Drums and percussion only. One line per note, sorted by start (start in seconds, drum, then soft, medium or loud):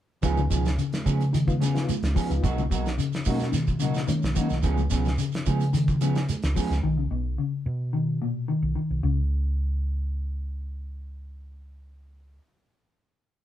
0.23 kick loud
0.23 closed hi-hat medium
0.23 low conga medium
0.23 shekere medium
0.37 high conga medium
0.37 shekere soft
0.51 kick medium
0.51 closed hi-hat medium
0.51 shekere medium
0.65 snare medium
0.65 closed hi-hat soft
0.65 shekere soft
0.78 closed hi-hat medium
0.78 shekere medium
0.93 snare medium
0.93 closed hi-hat soft
0.93 high conga medium
0.93 shekere soft
1.06 kick medium
1.06 closed hi-hat soft
1.06 high conga medium
1.06 shekere medium
1.21 closed hi-hat soft
1.21 shekere soft
1.34 closed hi-hat medium
1.34 shekere medium
1.48 kick medium
1.48 closed hi-hat soft
1.48 high conga medium
1.48 low conga medium
1.48 shekere soft
1.62 snare soft
1.62 closed hi-hat medium
1.62 high conga medium
1.62 shekere medium
1.76 snare medium
1.76 closed hi-hat soft
1.76 shekere soft
1.89 closed hi-hat medium
1.89 high conga medium
1.89 shekere medium
2.03 snare medium
2.03 closed hi-hat soft
2.03 shekere soft
2.16 kick medium
2.16 open hi-hat medium
2.16 shekere medium
2.31 closed hi-hat soft
2.31 shekere soft
2.44 kick medium
2.44 closed hi-hat medium
2.44 low conga medium
2.44 shekere medium
2.58 high conga medium
2.58 shekere soft
2.71 kick medium
2.71 closed hi-hat soft
2.71 shekere medium
2.86 snare medium
2.86 closed hi-hat soft
2.86 shekere soft
2.99 closed hi-hat medium
2.99 shekere medium
3.13 snare medium
3.13 closed hi-hat soft
3.13 shekere soft
3.25 kick medium
3.25 open hi-hat medium
3.25 high conga medium
3.25 shekere medium
3.39 snare soft
3.39 closed hi-hat soft
3.39 low conga medium
3.39 shekere soft
3.53 snare soft
3.53 closed hi-hat medium
3.53 shekere medium
3.67 kick medium
3.67 closed hi-hat soft
3.67 high conga medium
3.67 low conga medium
3.67 shekere soft
3.80 closed hi-hat medium
3.80 high conga medium
3.80 shekere medium
3.94 snare medium
3.94 closed hi-hat soft
3.94 shekere soft
4.08 closed hi-hat medium
4.08 high conga medium
4.08 shekere medium
4.22 snare medium
4.22 shekere soft
4.36 kick medium
4.36 closed hi-hat medium
4.36 high conga medium
4.36 shekere medium
4.50 snare soft
4.50 shekere soft
4.63 kick medium
4.63 closed hi-hat medium
4.63 low conga medium
4.63 shekere medium
4.78 high conga medium
4.78 shekere soft
4.90 kick medium
4.90 snare soft
4.90 closed hi-hat medium
4.90 shekere medium
5.05 snare medium
5.05 closed hi-hat soft
5.05 shekere soft
5.18 closed hi-hat medium
5.18 shekere medium
5.32 snare medium
5.32 closed hi-hat soft
5.32 shekere soft
5.46 kick medium
5.46 closed hi-hat medium
5.46 high conga medium
5.46 shekere medium
5.60 closed hi-hat soft
5.60 shekere soft
5.74 closed hi-hat medium
5.74 shekere medium
5.88 kick medium
5.88 closed hi-hat soft
5.88 low conga medium
5.88 shekere soft
6.01 closed hi-hat medium
6.01 high conga loud
6.01 shekere medium
6.15 snare medium
6.15 closed hi-hat soft
6.15 shekere soft
6.29 closed hi-hat medium
6.29 high conga medium
6.29 shekere medium
6.42 snare medium
6.42 closed hi-hat soft
6.42 shekere soft
6.56 kick medium
6.56 open hi-hat medium
6.56 high conga medium
6.56 shekere medium
6.71 snare soft
6.71 closed hi-hat soft
6.71 shekere soft